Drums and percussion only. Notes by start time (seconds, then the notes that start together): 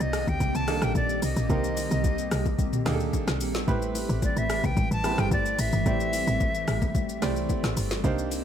0.00 shaker
0.13 cross-stick, open hi-hat, shaker
0.27 kick, high bongo, low bongo, shaker
0.40 kick, low conga, shaker
0.55 shaker
0.68 cross-stick, open hi-hat, low bongo, shaker
0.82 cross-stick, shaker
0.95 kick, high bongo, shaker
1.09 shaker
1.22 open hi-hat, shaker
1.36 shaker
1.50 kick, low conga, shaker
1.64 low bongo, shaker
1.77 open hi-hat, high bongo, shaker
1.91 shaker
2.04 kick, high bongo, low conga, shaker
2.18 shaker
2.31 cross-stick, open hi-hat, shaker
2.46 kick, high bongo, low bongo, shaker
2.59 kick, low conga, shaker
2.73 mid tom, shaker
2.86 cross-stick, snare, mid tom, open hi-hat, low bongo, shaker
3.00 shaker
3.13 kick, high bongo, shaker
3.28 cross-stick, snare, shaker
3.41 open hi-hat, shaker
3.55 snare, shaker
3.68 kick, low conga, shaker
3.82 shaker
3.95 open hi-hat, high bongo, shaker
4.09 shaker
4.22 kick, high bongo, low conga, shaker
4.37 shaker
4.50 cross-stick, open hi-hat, shaker
4.64 kick, high bongo, low bongo, shaker
4.77 kick, low conga, shaker
4.91 shaker
5.04 cross-stick, open hi-hat, low bongo, shaker
5.18 cross-stick, shaker
5.31 kick, high bongo, shaker
5.46 shaker
5.59 open hi-hat, shaker
5.73 shaker
5.86 kick, low conga, shaker
6.00 shaker
6.13 open hi-hat, high bongo, shaker
6.27 shaker
6.40 kick, high bongo, low conga, shaker
6.55 shaker
6.68 cross-stick, open hi-hat, shaker
6.82 kick, high bongo, low bongo, shaker
6.95 kick, low conga, shaker
7.09 shaker
7.22 cross-stick, snare, open hi-hat, low bongo, shaker
7.36 shaker
7.50 kick, high bongo, shaker
7.64 cross-stick, snare, shaker
7.77 open hi-hat, shaker
7.91 snare, shaker
8.04 kick, low conga, shaker
8.18 shaker
8.31 open hi-hat, high bongo, shaker